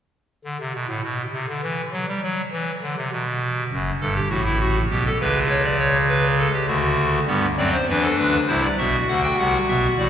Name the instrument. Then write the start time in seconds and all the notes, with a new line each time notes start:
pipe organ
0.45 D3
0.60 C3
0.74 B2
0.88 A2
1.03 B2
1.33 C3
1.48 D3
1.63 E3
1.93 F#3
2.08 G3
2.23 F#3
2.53 E3
2.82 D3
2.97 C3
3.12 B2
3.72 F#1 F#2
4.01 G1 G2 A4
4.16 G4
4.30 A1 A2 F#4
4.45 E4
4.60 F#4
4.91 B1 B2 G4
5.06 A4
5.20 C#2 C#3 B4
5.50 C#5
5.65 D5
5.80 C#5
6.09 B4
6.38 A4
6.53 G4
6.67 D2 D3 F#4
7.27 G2 G3 B3
7.57 F#2 F#3 C4 D5
7.73 C5
7.89 E2 E3 D4 B4
8.03 A4
8.18 D2 D3 B4
8.48 C2 C3 E4 C5
8.63 D5
8.78 B1 B2 F#4 E5
9.08 D2 D3 F#5
9.23 G5
9.38 C2 C3 F#5
9.68 B1 B2 E5
9.98 A1 A2 D5